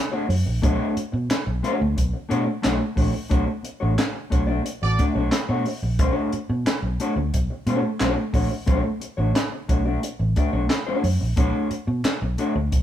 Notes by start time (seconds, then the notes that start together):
0.12 A3 D4 F#4 C#5
0.29 F#2, muted clean electric guitar stroke, open hi-hat
0.46 A#1, muted clean electric guitar stroke
0.62 B1 A3 D4 F#4 C#5, kick, closed hi-hat
0.97 muted fingered electric bass stroke, closed hi-hat
1.12 B2, muted clean electric guitar stroke
1.29 muted clean electric guitar stroke, muted fingered electric bass stroke, snare, clap, closed hi-hat
1.46 B1, muted clean electric guitar stroke
1.63 A3 D4 F#4 C#5, closed hi-hat
1.79 D2, muted clean electric guitar stroke
1.96 B1, muted clean electric guitar stroke, kick, closed hi-hat
2.13 muted clean electric guitar stroke
2.29 B2 A3 D4 F#4 C#5, closed hi-hat
2.47 muted clean electric guitar stroke
2.62 B1 A3 D4 F#4 C#5, snare, clap, closed hi-hat
2.79 muted clean electric guitar stroke
2.96 A#1 A3 D4 F#4 C#5, kick, open hi-hat
3.13 muted clean electric guitar stroke
3.29 B1 A3 D4 F#4 C#5, kick, closed hi-hat
3.47 muted clean electric guitar stroke
3.63 muted clean electric guitar stroke, closed hi-hat
3.80 A1 A3 D4 F#4 C#5
3.96 muted clean electric guitar stroke, snare, clap, closed hi-hat
4.13 muted clean electric guitar stroke
4.30 B1 A3 D4 F#4 C#5, kick, closed hi-hat
4.47 A3 D4 F#4 D5
4.64 muted clean electric guitar stroke, closed hi-hat
4.82 A1 F#4 A4 D5, muted clean electric guitar stroke
4.99 A3 D4 F#4 D5, kick, closed hi-hat
5.15 B1 A3 D4 F#4 C#5
5.32 muted clean electric guitar stroke, snare, clap, closed hi-hat
5.49 B2 A3 D4 F#4 C#5
5.65 muted clean electric guitar stroke, open hi-hat
5.83 A#1, muted clean electric guitar stroke
5.99 B1 G#3 C#4 F4 C5, kick, closed hi-hat
6.12 A3 D4 F#4 C#5
6.32 muted fingered electric bass stroke, closed hi-hat
6.50 B2, muted clean electric guitar stroke
6.65 muted clean electric guitar stroke, muted fingered electric bass stroke, snare, clap, closed hi-hat
6.83 B1, muted clean electric guitar stroke
7.00 A3 D4 F#4 C#5, closed hi-hat
7.16 D2, muted clean electric guitar stroke
7.34 B1, muted clean electric guitar stroke, kick, closed hi-hat
7.50 muted clean electric guitar stroke
7.67 B2 A3 D4 F#4 C#5, closed hi-hat
7.83 muted clean electric guitar stroke
8.00 B1 A3 D4 F#4 C#5, snare, clap, closed hi-hat
8.17 muted clean electric guitar stroke
8.33 A#1 A3 D4 F#4 C#5, kick, open hi-hat
8.51 muted clean electric guitar stroke
8.66 B1 A3 D4 F#4 C#5, kick, closed hi-hat
8.84 muted clean electric guitar stroke
9.00 muted clean electric guitar stroke, closed hi-hat
9.17 A1 A3 D4 F#4 C#5
9.34 muted clean electric guitar stroke, snare, clap, closed hi-hat
9.52 muted clean electric guitar stroke
9.68 B1 A3 D4 F#4 C#5, kick, closed hi-hat
9.86 A3 D4 F#4 D5
10.03 muted clean electric guitar stroke, closed hi-hat
10.19 A1, muted clean electric guitar stroke
10.36 A3 D4 F#4 D5, kick, closed hi-hat
10.53 B1 A3 D4 F#4 C#5
10.70 muted clean electric guitar stroke, snare, clap, closed hi-hat
10.87 A3 D4 F#4 C#5
11.04 F#2, muted clean electric guitar stroke, open hi-hat
11.21 A#1, muted clean electric guitar stroke
11.36 B1 A3 D4 F#4 C#5, kick, closed hi-hat
11.71 muted fingered electric bass stroke, closed hi-hat
11.87 B2, muted clean electric guitar stroke
12.04 muted fingered electric bass stroke, muted clean electric guitar stroke, snare, clap, closed hi-hat
12.22 B1, muted clean electric guitar stroke
12.38 A3 D4 F#4 C#5, closed hi-hat
12.55 D2, muted clean electric guitar stroke
12.72 B1, muted clean electric guitar stroke, kick, closed hi-hat